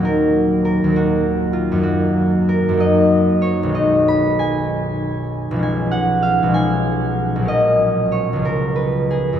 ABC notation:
X:1
M:6/8
L:1/8
Q:3/8=64
K:D#m
V:1 name="Harp"
[Af]2 A F2 E | F2 A d2 c | d b g4 | g f e g3 |
d2 c A B G |]
V:2 name="Harp" clef=bass
[D,,F,A,D]3 [D,,F,A,D]3 | [F,,F,A,D]3 [F,,F,A,D]3 | [B,,,D,G,D]6 | [B,,,E,G,C]3 [B,,,E,G,C]3 |
[A,,,F,A,C]3 [C,,E,G,C]3 |]